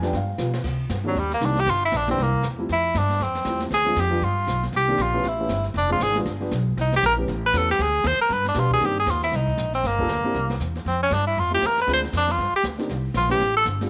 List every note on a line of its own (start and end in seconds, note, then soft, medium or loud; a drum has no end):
0.00 0.12 F2 loud
0.00 0.11 F3 medium
0.00 0.12 G3 medium
0.00 0.12 B3 medium
0.00 0.12 D4 medium
0.00 snare soft
0.06 0.15 G5 medium
0.13 0.38 G2 medium
0.13 0.58 F5 medium
0.13 brush sweep soft
0.13 kick soft
0.13 snare soft
0.38 0.63 B2 medium
0.38 0.52 F3 medium
0.38 0.52 G3 medium
0.38 0.53 B3 medium
0.38 0.53 F4 medium
0.38 snare medium
0.38 hi-hat pedal medium
0.54 snare medium
0.64 0.89 C3 medium
0.64 brush sweep soft
0.64 kick medium
0.64 snare soft
0.64 crash medium
0.89 1.15 G2 medium
0.89 kick soft
0.89 snare medium
0.89 hi-hat pedal medium
1.04 1.14 D#3 medium
1.04 1.20 F#3 medium
1.04 1.14 G3 medium
1.04 1.14 A#3 medium
1.04 1.15 C4 medium
1.04 1.15 D4 medium
1.15 1.40 D#2 medium
1.15 1.32 G3 medium
1.15 brush sweep soft
1.15 kick soft
1.15 snare soft
1.31 1.47 A#3 medium
1.31 snare soft
1.41 1.66 C2 medium
1.41 1.55 D#3 medium
1.41 1.55 G3 medium
1.41 1.55 A#3 medium
1.41 1.55 C4 medium
1.41 1.56 D#4 medium
1.41 kick soft
1.41 snare medium
1.41 hi-hat pedal soft
1.46 1.61 D4 medium
1.56 1.72 G4 loud
1.56 snare soft
1.66 1.91 G1 medium
1.66 1.84 F4 medium
1.66 brush sweep soft
1.66 kick soft
1.66 snare soft
1.85 1.98 E4 medium
1.92 2.17 A#1 medium
1.92 kick soft
1.92 snare medium
1.92 hi-hat pedal medium
1.97 2.10 D4 medium
2.07 2.17 E3 medium
2.07 2.17 G3 medium
2.07 2.17 A#3 medium
2.07 2.17 C4 medium
2.07 2.24 C4 medium
2.07 2.17 D4 medium
2.07 snare soft
2.18 2.43 C2 medium
2.18 brush sweep medium
2.18 kick soft
2.18 snare soft
2.23 2.46 A#3 medium
2.33 kick soft
2.43 2.68 E2 medium
2.43 snare medium
2.43 hi-hat pedal medium
2.58 2.68 F3 medium
2.58 2.68 G3 medium
2.58 2.68 A3 medium
2.58 2.68 C4 medium
2.58 2.69 E4 medium
2.69 2.94 F2 medium
2.69 2.99 E4 medium
2.69 brush sweep soft
2.69 kick soft
2.69 snare soft
2.95 3.19 G2 medium
2.95 3.25 D4 medium
2.95 kick soft
2.95 snare medium
2.95 hi-hat pedal medium
3.10 snare soft
3.20 3.44 F2 medium
3.20 3.62 C4 medium
3.20 brush sweep soft
3.20 kick soft
3.20 snare soft
3.35 snare medium
3.45 3.70 E2 medium
3.45 3.71 F3 medium
3.45 3.71 G3 medium
3.45 3.71 A3 medium
3.45 3.71 C4 medium
3.45 3.72 E4 medium
3.45 kick soft
3.45 snare medium
3.45 hi-hat pedal medium
3.60 snare medium
3.70 3.95 D2 medium
3.70 4.02 G#4 loud
3.70 brush sweep medium
3.70 kick soft
3.70 snare soft
3.85 3.95 F3 medium
3.85 3.95 G#3 medium
3.85 3.95 C4 medium
3.85 3.96 D4 medium
3.85 3.96 F4 medium
3.96 4.21 F2 medium
3.96 kick soft
3.96 snare medium
3.96 hi-hat pedal medium
4.00 4.26 G4 medium
4.10 4.20 F3 medium
4.10 4.20 G3 medium
4.10 4.21 B3 medium
4.10 4.21 D4 medium
4.10 4.21 F4 medium
4.21 4.46 G2 medium
4.21 4.64 F4 medium
4.21 brush sweep soft
4.21 kick soft
4.21 snare soft
4.47 4.72 B1 medium
4.47 kick soft
4.47 snare medium
4.47 hi-hat pedal medium
4.63 snare soft
4.72 4.97 C2 medium
4.72 brush sweep soft
4.72 kick soft
4.72 snare soft
4.76 5.03 G4 medium
4.88 4.97 D#3 medium
4.88 4.97 A#3 medium
4.88 4.98 C4 medium
4.88 4.98 D4 medium
4.88 4.98 G4 medium
4.98 5.23 A#1 medium
4.98 kick soft
4.98 snare medium
4.98 hi-hat pedal medium
5.02 5.30 F4 medium
5.13 5.23 E3 medium
5.13 5.23 A3 medium
5.13 5.23 B3 medium
5.13 5.23 C#4 medium
5.13 5.23 G4 medium
5.23 5.48 A1 medium
5.23 brush sweep soft
5.23 kick soft
5.23 snare soft
5.28 5.67 E4 medium
5.39 5.48 E3 medium
5.39 5.49 A3 medium
5.39 5.49 B3 medium
5.39 5.49 C#4 medium
5.39 5.49 G4 medium
5.49 5.73 G1 medium
5.49 kick soft
5.49 snare medium
5.49 hi-hat pedal medium
5.64 snare soft
5.74 5.99 F1 medium
5.74 5.91 D4 medium
5.74 brush sweep soft
5.74 kick soft
5.74 snare soft
5.89 5.99 F3 medium
5.89 5.99 G#3 medium
5.89 5.99 C4 medium
5.89 6.00 D4 medium
5.89 6.05 F4 medium
5.89 6.00 G#4 medium
6.00 6.25 G#1 medium
6.00 6.17 G#4 loud
6.00 kick soft
6.00 snare medium
6.00 hi-hat pedal medium
6.15 6.24 F3 medium
6.15 6.25 G3 medium
6.15 6.25 B3 medium
6.15 6.25 D4 medium
6.15 6.25 F4 medium
6.15 snare soft
6.25 6.50 G1 medium
6.25 brush sweep medium
6.25 kick soft
6.25 snare soft
6.40 6.50 F3 medium
6.40 6.50 G3 medium
6.40 6.50 B3 medium
6.40 6.51 D4 medium
6.40 6.51 G4 medium
6.51 6.76 B1 medium
6.51 kick soft
6.51 snare medium
6.51 hi-hat pedal soft
6.77 7.02 C2 medium
6.77 6.93 D#4 medium
6.77 brush sweep soft
6.77 kick soft
6.77 snare soft
6.93 7.04 G4 loud
6.93 snare medium
7.03 7.27 A#1 loud
7.03 7.14 A#4 loud
7.03 kick soft
7.03 snare medium
7.03 hi-hat pedal medium
7.17 7.26 E3 medium
7.17 7.27 A3 medium
7.17 7.27 B3 medium
7.17 7.27 C#4 medium
7.17 7.27 G4 medium
7.28 7.53 A1 medium
7.28 brush sweep soft
7.28 kick soft
7.28 snare soft
7.46 7.59 B4 loud
7.53 7.78 E2 medium
7.53 7.67 E3 medium
7.53 7.67 A3 medium
7.53 7.67 B3 medium
7.53 7.68 C#4 medium
7.53 7.68 G4 medium
7.53 kick soft
7.53 snare medium
7.53 hi-hat pedal medium
7.57 7.70 A4 medium
7.69 7.84 G4 medium
7.69 snare soft
7.79 8.04 D2 medium
7.79 8.08 G#4 medium
7.79 brush sweep soft
7.79 kick soft
7.79 snare soft
8.04 8.18 D#2 loud
8.04 8.21 C5 loud
8.04 kick soft
8.04 snare medium
8.04 hi-hat pedal medium
8.19 8.34 A#4 medium
8.19 muted upright bass stroke soft
8.29 8.54 G2 medium
8.29 8.47 B4 loud
8.29 brush sweep medium
8.29 kick soft
8.29 snare soft
8.45 8.61 D4 medium
8.45 snare soft
8.54 8.80 B2 medium
8.54 8.81 F3 medium
8.54 8.81 G3 medium
8.54 8.81 B3 medium
8.54 8.80 D4 medium
8.54 8.81 G4 medium
8.54 kick soft
8.54 snare medium
8.54 hi-hat pedal medium
8.59 8.73 F4 medium
8.70 8.87 G#4 loud
8.70 kick medium
8.80 9.06 G2 medium
8.80 8.94 D#3 medium
8.80 8.95 A#3 medium
8.80 8.95 C4 medium
8.80 8.95 D4 medium
8.80 8.95 G4 medium
8.80 brush sweep soft
8.80 snare soft
8.86 8.99 G4 medium
9.00 9.12 G#4 medium
9.06 9.31 D#2 medium
9.06 kick soft
9.06 snare medium
9.06 hi-hat pedal medium
9.11 9.23 F4 medium
9.22 9.37 E4 medium
9.22 snare soft
9.32 9.57 C2 medium
9.32 9.74 D#4 medium
9.32 brush sweep soft
9.32 kick soft
9.32 snare soft
9.47 kick medium
9.58 9.82 A#1 medium
9.58 snare medium
9.58 hi-hat pedal medium
9.73 9.89 C4 medium
9.73 snare soft
9.83 10.08 G1 medium
9.83 10.62 A#3 medium
9.83 brush sweep medium
9.83 kick soft
9.83 snare soft
9.99 10.08 G3 medium
9.99 10.08 A#3 medium
9.99 10.08 D4 medium
9.99 10.09 F4 medium
9.99 10.09 A4 medium
9.99 kick medium
10.08 10.23 D2 loud
10.08 kick soft
10.08 snare medium
10.08 hi-hat pedal medium
10.24 10.33 A#3 medium
10.24 10.34 C4 medium
10.24 10.34 D4 medium
10.24 10.34 E4 medium
10.24 10.34 G4 medium
10.24 muted upright bass stroke soft
10.34 10.59 C2 medium
10.34 brush sweep soft
10.34 kick soft
10.34 snare soft
10.49 snare medium
10.60 10.84 E2 medium
10.60 kick soft
10.60 snare medium
10.60 hi-hat pedal soft
10.75 snare soft
10.85 11.10 F2 medium
10.85 11.01 C4 medium
10.85 brush sweep soft
10.85 kick soft
10.85 snare soft
11.03 11.15 C#4 medium
11.11 11.36 G2 loud
11.11 11.26 D4 medium
11.11 kick soft
11.11 snare medium
11.11 hi-hat pedal medium
11.27 11.41 E4 medium
11.36 11.61 F2 medium
11.36 11.53 F4 medium
11.36 brush sweep soft
11.36 kick soft
11.36 snare soft
11.50 11.60 A3 medium
11.50 11.60 C4 medium
11.50 11.61 E4 medium
11.50 11.61 F4 medium
11.50 11.61 G4 medium
11.54 11.68 G4 medium
11.62 11.87 E2 medium
11.62 kick soft
11.62 snare medium
11.62 hi-hat pedal medium
11.66 11.79 A#4 medium
11.78 11.89 B4 medium
11.78 snare soft
11.87 12.12 D2 medium
11.87 12.01 G#3 medium
11.87 12.01 C4 medium
11.87 12.01 D4 medium
11.87 12.01 F4 medium
11.87 12.01 G#4 medium
11.87 brush sweep soft
11.87 kick soft
11.87 snare soft
11.93 12.01 C5 medium
11.93 snare soft
12.04 snare soft
12.13 12.37 F2 medium
12.13 kick soft
12.13 snare medium
12.13 hi-hat pedal medium
12.17 12.33 D4 medium
12.28 12.55 F4 medium
12.28 snare soft
12.38 12.52 G2 medium
12.38 brush sweep soft
12.38 kick soft
12.38 snare soft
12.53 12.64 G4 loud
12.53 muted upright bass stroke soft
12.63 12.88 D2 medium
12.63 kick soft
12.63 snare medium
12.63 hi-hat pedal medium
12.78 12.88 A#3 medium
12.78 12.88 C4 medium
12.78 12.88 D4 medium
12.78 12.88 D#4 medium
12.78 12.89 G4 medium
12.78 snare soft
12.89 13.14 C2 medium
12.89 brush sweep soft
12.89 kick soft
12.89 snare soft
13.14 13.39 A#1 medium
13.14 13.30 F4 medium
13.14 kick soft
13.14 snare medium
13.14 hi-hat pedal medium
13.29 13.39 A3 medium
13.29 13.39 B3 medium
13.29 13.39 C#4 medium
13.29 13.39 E4 medium
13.29 13.39 G4 medium
13.29 13.54 G4 medium
13.29 snare soft
13.39 13.64 A1 medium
13.39 brush sweep soft
13.39 kick soft
13.39 snare soft
13.57 13.66 A4 loud
13.65 13.90 G1 medium
13.65 kick soft
13.65 snare medium
13.65 hi-hat pedal medium
13.81 13.90 G#3 medium
13.81 13.90 C4 medium
13.81 13.90 D4 medium
13.81 13.90 F4 medium
13.81 13.90 G4 medium
13.81 snare soft